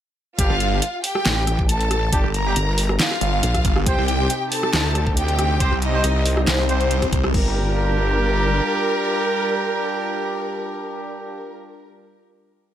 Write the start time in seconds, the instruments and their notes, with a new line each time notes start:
0.39 wobble bass G1, brass ensemble G3 D4 G4, violin section F4 F5, kick, closed hi-hat
0.50 detuned saw bass G1
0.60 closed hi-hat
0.72 brass ensemble G3 D4 G4
0.82 closed hi-hat
1.04 violin section G4 G5, open hi-hat
1.15 cross-stick
1.26 wobble bass A1, cross-stick, snare, clap
1.47 cross-stick, closed hi-hat
1.59 kick
1.69 violin section A4 A5, closed hi-hat
1.81 closed hi-hat
1.91 cross-stick, closed hi-hat
2.12 wobble bass G1, brass ensemble G3 D4 G4, kick, closed hi-hat
2.24 detuned saw bass G1
2.34 violin section A#4 A#5, closed hi-hat
2.46 brass ensemble G3 D4 G4
2.56 wobble bass G1, closed hi-hat
2.78 open hi-hat
2.89 cross-stick
2.99 violin section F4 F5, snare, clap
3.11 cross-stick
3.21 detuned saw bass G1, closed hi-hat
3.43 wobble bass A#1, closed hi-hat
3.54 kick, cross-stick, closed hi-hat
3.65 detuned saw bass G1, kick, closed hi-hat
3.76 cross-stick
3.86 wobble bass C2, supersaw synth C3 C4 D#4 G4, brass ensemble C4 G4 C5, violin section G4 G5, kick, closed hi-hat
3.98 detuned saw bass C2
4.08 closed hi-hat
4.20 brass ensemble C4 G4 C5
4.30 closed hi-hat
4.52 violin section A4 A5, open hi-hat
4.63 cross-stick
4.73 wobble bass D2, cross-stick, snare, clap
4.95 cross-stick, closed hi-hat
5.07 kick
5.17 violin section G4 G5, closed hi-hat
5.28 closed hi-hat
5.39 cross-stick, closed hi-hat
5.60 wobble bass C2, brass ensemble C4 G4 C5, kick, closed hi-hat
5.72 detuned saw bass C2
5.82 violin section D#4 D#5, closed hi-hat
5.94 brass ensemble C4 G4 C5
6.04 wobble bass C2, closed hi-hat
6.26 open hi-hat
6.37 cross-stick
6.47 detuned saw bass C2, violin section C4 C5, snare, clap
6.59 cross-stick
6.69 brass ensemble C4 G4 C5, closed hi-hat
6.81 brass ensemble C4 G4 C5, closed hi-hat
6.91 closed hi-hat
7.02 kick, cross-stick, closed hi-hat
7.13 kick, closed hi-hat
7.24 cross-stick
7.34 wobble bass G1, brass ensemble G3 D4 G4, supersaw synth G3 D4 F4 A#4, violin section A#4, kick, crash